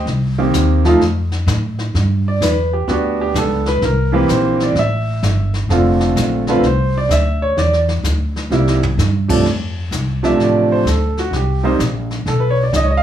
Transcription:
0.06 C2, brush sweep, snare
0.38 D#3 A#3 C4 G4
0.51 D#2, snare, hi-hat pedal
0.85 F3 A3 D#4 F4, snare
1.00 F2, brush sweep, snare
1.32 snare
1.47 A2, snare, hi-hat pedal
1.79 snare
1.94 G2, brush sweep, snare
2.28 D5
2.41 E2 B4, snare, hi-hat pedal
2.73 G4
2.88 D2 B3 D4 F#4 G4, brush sweep, snare
3.22 G4
3.34 C#2 A4, snare, hi-hat pedal
3.66 B4, snare
3.82 C2 A#4, brush sweep, snare
4.12 E3 A#3 C4 G4 B4
4.28 A#1 C5, snare, hi-hat pedal
4.60 D5, snare
4.75 A1 E5, brush sweep, snare
5.23 G1, snare, hi-hat pedal
5.54 snare
5.69 F1 D3 A3 C4 F4, brush sweep, snare
6.00 snare
6.16 A#1, snare, hi-hat pedal
6.47 D3 A3 C4 F4 B4, snare
6.63 C2 C5, brush sweep, snare
6.98 D5
7.09 D2 E5, snare, hi-hat pedal
7.42 C#5
7.57 E2 D5, brush sweep, snare
7.73 snare
7.88 snare
8.03 D2, snare, hi-hat pedal
8.36 snare
8.50 C2 C3 G3 A#3 E4, snare
8.67 snare
8.83 floor tom
8.98 G2, snare, hi-hat pedal
9.28 C3 F3 A3 D4, kick, crash
9.45 F2, brush sweep, snare
9.91 C2, snare, hi-hat pedal
10.23 C3 F3 A3 D4 E5, snare
10.37 A1, brush sweep, snare
10.42 D5
10.72 C5
10.85 D2 A4, snare, hi-hat pedal
11.17 F#4, snare
11.31 C2, brush sweep, snare
11.36 G4
11.63 C3 G3 A#3 D#4 C5
11.79 A#1, snare, hi-hat pedal
12.11 snare
12.26 B1 A4, brush sweep, snare
12.40 B4
12.50 C#5
12.63 D5
12.73 C#2 D#5, snare, hi-hat pedal
12.84 C#5
12.91 D#5
12.97 F5

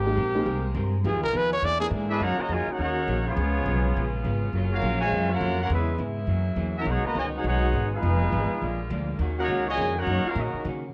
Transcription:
Already playing: G#1 C3 G#3 A#3 G4
0.06 G#3 A#3 C4 D#4 G4
0.16 A#1 G#3 C4 G4 A#4
0.35 G#3 A#3 C4 D#4 G4
0.45 C2 G#3 C4 G4 A#4
0.75 G2 G#3 C4 G4 A#4
1.03 F2 D#3 F3 G#3 B3 D#4 F4 G4 G#4
1.15 D#2
1.24 B1 A#4
1.33 D#2 F3 B3 D#4 G#4
1.37 B4
1.53 C#5
1.62 E2 D3 E3 A#3 D4 E4 G#4 D5
1.80 G#3 B3 D4 E4 G#4 A#4
1.91 G#2 E3 A#3 D4 G#4
2.09 G#3 B3 D4 E4 G#4 B4 E5
2.20 F#2 C#3 D#3 F#3 A#3 C#4 D#4 F#4 A#4 C#5 F#5
2.38 C#3 F#3 A#3 F#4 C#5 D#5 A#5, muted upright bass stroke
2.49 F2 D#3 G#3 A#3 C#4 F#4
2.53 F4 A#4 C#5 G#5
2.67 A#3 C#4 D#4 F#4 C#5, muted upright bass stroke
2.71 A#4 F#5
2.79 D#2 D#3 A#3 C#4 D#4 F#4 A#4 C#5 F#5
3.07 A#1 D#3 A#3 C#4 F#4
3.28 F3 G#3 B3 C#4 F4 G#4 C#5
3.36 C#2 C#3 G#3 B3 F4
3.41 G#3
3.66 B1 C#3 G#3 B3 F4
3.96 A#1 C#3 G#3 B3 F4
4.24 G#1 C#3 G#3 B3 F4
4.53 F#1 F#3 A#3 C#4
4.57 F4
4.72 A#3 C#4 F4 F#4 A#4 F5
4.82 A#1 F#3 A#3 C#4
4.86 F4
5.01 C#3 F3 G#3 F#4 C#5 F5 G#5
5.12 F#2 F#3 A#3 C#4 F4
5.31 A#3 C#4 F4 F#4 A#4 F#5
5.40 F2 F#3 A#3 C#4 F4
5.60 A#3 C#4 F4 F#4 A#4 F#5
5.70 E2 C#3 G#3 B3 C#4 E4 G#4 B4 E5
5.76 G#3 B3 E4
5.98 G#2 C#3 G#3 B3 E4
6.27 F#2 E3 F#3 A#3 C#4
6.56 E2 F#2 E3 A#3 C#4
6.76 A#3 C#4 E4 F#4 A#4 E5
6.83 B1 B2 D#3 G#3 C#4
6.88 G#3 B3 D#4 F#4 G#4 C#5 F#5
7.04 A#3 F#4 B4 D#5 A#5, muted upright bass stroke
7.14 C#2 B2 D#3 G#3 C#4 D#5
7.18 G#2 D#3 G#3 F#4 C#5 G#5
7.36 G#3 D#4 F#4 G#4 C#5 F#5
7.43 B1 B2 D#3 G#3 C#4 D#4 G#4 C#5 F#5
7.49 G#3 D#4 F#4
7.73 G#1 B2 D#3 G#3 C#4
7.95 G#3 B3 D#4 F4 G#4 B4 F5
8.02 F1 F3 B3 D#4 F4 G#4
8.06 D#3
8.30 G#1 F3 B3 D#4 G#4
8.50 muted upright bass stroke
8.59 A#1 A#2 D3 F3 G#3 D4
8.64 A#3
8.90 D2 A#2 F3 G#3 D4
9.18 D#2 C#3 D#3 F#3 A#3 C#4 D#4 F#4
9.37 A#3 C#4 D#4 F#4 A#4 C#5 F#5
9.48 C#2 D#3 A#3 C#4 F#4
9.67 A#2 C#3 G#3 F#4 C#5 D#5 G#5
9.77 F2 D#3 A#3 C#4 F#4
9.96 A#3 C#4 D#4 F#4 A#4 C#5 F#5
10.06 F#2 D#3 A#3 C#4 F#4
10.24 C#4 F4 F#4 A#4 F5, muted upright bass stroke
10.35 A#2 D#3 F#3 A#3 C#4 D#4 F#4 A#4 D#5
10.40 C#4
10.53 muted upright bass stroke
10.64 C#3 D#3 A#3 C#4 F#4

